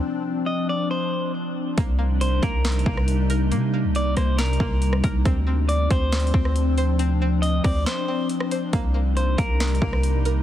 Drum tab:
HH |------------------------------------------------|x-----------x-----x-----x-x-x-------x-----x-----|x-----------x-----x-----x-x-x-------x-----x-----|x-----------x-----x-----x-x-x-------x-----x-----|
SD |------------------------------------------------|------------------------o--------r--------------|------------------r-----o--------------r--------|------------------------o--------r--------------|
BD |------------------------------------------------|o-----------------o-----------o-----------------|------------------------------o-----------o-----|o-----------------o-----------o-----------------|

HH |x-----------x-----o-----x-----------x-----x-----|x-----------x-----x-----x-x-x-------x-----x-----|
SD |------------------r-----o--------------r--------|------------------------o--------r--------------|
BD |------------------o-----------------------------|o-----------------o-----------o-----------------|